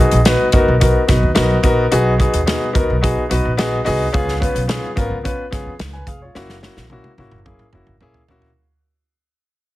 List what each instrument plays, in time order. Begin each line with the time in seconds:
Already playing: grand piano B2 B3 D#4
0.00 grand piano F#4 G#4
0.11 upright bass A#1, closed hi-hat
0.25 grand piano B3 D#4 F#4 B4, snare, closed hi-hat
0.52 upright bass F#1, grand piano B3 D#4 F#4 A#4, kick, closed hi-hat
0.68 upright bass B1
0.80 grand piano B3 D#4 F#4 A#4, kick, closed hi-hat
1.07 upright bass B1, grand piano B3 D#4 F#4 B4, kick, snare, closed hi-hat
1.23 upright bass D#2
1.35 upright bass B1, grand piano B3 D#4 F#4 A#4, snare, closed hi-hat
1.63 upright bass A#1, grand piano B3 D#4 F#4 A#4, kick, closed hi-hat
1.91 upright bass B1, grand piano B2 B3 D#4 F#4 G#4, closed hi-hat
2.18 grand piano B3 D#4 F#4 G#4, kick, closed hi-hat
2.34 upright bass D#2, closed hi-hat
2.46 grand piano B3 D#4 F#4 G#4, snare, closed hi-hat
2.73 upright bass C#2, grand piano B3 D#4 F#4 A#4, kick, closed hi-hat
2.90 upright bass B1
3.01 grand piano B3 D#4 F#4 G#4, kick, closed hi-hat
3.29 upright bass B1, grand piano B3 D#4 F#4 B4, closed hi-hat
3.45 upright bass A#1
3.57 grand piano B3 D#4 F#4 G#4, snare, closed hi-hat
3.85 upright bass C2, grand piano B3 D#4 F#4 G#4, open hi-hat
4.12 upright bass C#2, grand piano C#3 B3 C#4 F4 G#4, kick, closed hi-hat
4.29 snare
4.40 grand piano B3 C#4 F4 B4, kick, closed hi-hat
4.55 upright bass B1, closed hi-hat
4.67 grand piano B3 C#4 F4 G#4, snare, closed hi-hat
4.96 upright bass G#1, grand piano B3 C#4 F4 A#4, kick, closed hi-hat
5.10 upright bass C#2
5.23 grand piano B3 C#4 F4 B4, kick, closed hi-hat
5.51 upright bass C#2, grand piano B3 C#4 F4 G#4, kick, snare, closed hi-hat
5.66 upright bass F2
5.79 upright bass C#2, snare, closed hi-hat
5.93 grand piano B4 G#5
6.07 upright bass F1, grand piano G#4 F5, kick, closed hi-hat
6.22 grand piano F4 C#5
6.35 upright bass F#1, grand piano A#3 C#4 E4 F#4, snare
6.49 snare
6.62 grand piano A#3 C#4 E4 F#4, snare
6.77 upright bass A#1, snare
6.90 grand piano A#3 C#4 E4 F#4, high tom
7.04 high tom
7.18 upright bass G#1, grand piano A#3 C#4 E4 F#4, high tom
7.32 upright bass F#1, mid tom
7.45 grand piano A#3 C#4 E4 G#4, kick, mid tom
7.59 mid tom
7.73 upright bass F#1, grand piano A#3 C#4 E4 F#4, mid tom
7.87 upright bass G#1, mid tom
8.01 upright bass A#1, grand piano A#3 C#4 E4 G#4, mid tom
8.14 floor tom
8.28 upright bass A#1, grand piano A#3 C#4 E4 F#4, floor tom
8.42 floor tom